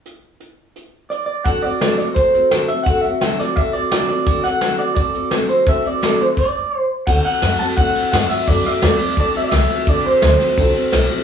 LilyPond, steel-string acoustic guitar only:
\new Staff \with { instrumentName = "Steel-string acoustic guitar" } { \time 4/4 \key d \mixolydian \tempo 4 = 171 r1 | <d a c' fis' a'>8 <c' fis' a'>8 <d a c' fis' a'>8 <c' fis' a'>8 <a c' fis' a'>8 <c' fis' a'>8 <d a c' fis' a'>8 <c' fis' a'>8 | <d a c' fis' a'>8 <c' fis' a'>8 <d a c' fis' a'>8 <c' fis' a'>8 <a c' fis' a'>8 <c' fis' a'>8 <d a c' fis' a'>8 <c' fis' a'>8 | <d a c' fis' a'>8 <c' fis' a'>8 <d a c' fis' a'>8 <c' fis' a'>8 <a c' fis' a'>8 <c' fis' a'>8 <d a c' fis' a'>8 <c' fis' a'>8 |
<d a c' fis' a'>8 <c' fis' a'>8 <d a c' fis' a'>8 <c' fis' a'>8 r2 | <d a c' fis' a'>8 <c' fis' a'>8 <a c' fis' a'>8 <c' fis' a'>8 <d a c' fis' a'>8 <c' fis' a'>8 <a c' fis' a'>8 <c' fis' a'>8 | <d a c' fis' a'>8 <c' fis' a'>8 <a c' fis' a'>8 <c' fis' a'>8 <d a c' fis' a'>8 <c' fis' a'>8 <a c' fis' a'>8 <c' fis' a'>8 | <d a c' fis' a'>8 <c' fis' a'>8 <a c' fis' a'>8 <c' fis' a'>8 <d a c' fis' a'>8 <c' fis' a'>8 <a c' fis' a'>8 <c' fis' a'>8 | }